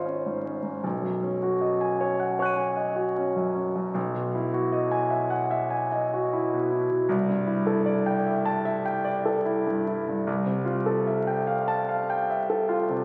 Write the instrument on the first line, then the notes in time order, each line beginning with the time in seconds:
grand piano
Already playing: G#1 C#4 F4 C5 C#5 D#5 F5
0.06 C#4
0.26 G#2
0.45 C#4
0.63 G#2
0.84 B1
1.02 F#2
1.23 C#4
1.43 F#4
1.61 D#5
1.81 G#5
2.01 C#5
2.20 F#5
2.39 C#5 C#6 F#6
2.45 D#7
2.56 G#5
2.77 D#5
2.96 F#4
3.17 C#4
3.36 F#2
3.55 C#4
3.76 F#2
3.94 B1
4.14 B2
4.35 E4
4.54 F#4
4.72 D#5
4.91 G#5
5.10 E5
5.30 F#5
5.51 E5
5.70 G#5
5.92 D#5
6.14 F#4
6.33 E4
6.54 B2
6.72 E4
6.90 B2
7.09 C2
7.28 G2
7.47 E4
7.67 A4
7.86 D5
8.06 G5
8.26 E5
8.45 A5
8.65 E5
8.86 G5
9.04 D5
9.25 A4
9.46 E4
9.66 G2
9.87 E4
10.08 G2
10.27 C2
10.46 C3
10.65 F4
10.86 A4
11.07 E5
11.27 G5
11.47 F5
11.68 A5
11.89 F5
12.10 G5
12.30 E5
12.50 A4
12.69 F4
12.90 C3